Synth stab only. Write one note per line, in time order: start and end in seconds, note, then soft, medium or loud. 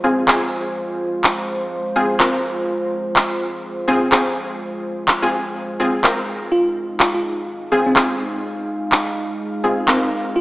0.04 0.25 C4 loud
0.04 0.25 F4 medium
0.04 0.25 G#4 loud
0.28 0.38 C4 medium
0.28 0.38 F4 medium
0.28 0.38 G#4 loud
1.96 2.06 C4 medium
1.96 2.06 F4 medium
1.96 2.06 G#4 loud
2.20 2.30 C4 medium
2.20 2.30 F4 medium
2.20 2.30 A#4 loud
3.88 4.09 C4 loud
3.88 4.09 F4 medium
3.88 4.09 G#4 loud
4.12 4.22 C4 loud
4.12 4.22 F4 medium
4.12 4.22 G#4 loud
5.22 5.29 C4 medium
5.22 5.29 F4 medium
5.22 5.29 G#4 loud
5.80 5.90 C4 medium
5.80 5.90 F4 medium
5.80 5.90 G#4 loud
6.04 6.14 C4 medium
6.04 6.14 F4 medium
6.04 6.14 A#4 loud
7.72 7.93 C4 loud
7.72 7.93 F4 medium
7.72 7.93 G#4 loud
7.96 8.06 C4 medium
7.96 8.06 F4 medium
7.96 8.06 G#4 loud
9.64 9.74 C4 medium
9.64 9.74 F4 medium
9.64 9.74 G#4 loud
9.88 9.98 C4 medium
9.88 9.98 F4 medium
9.88 9.98 A#4 loud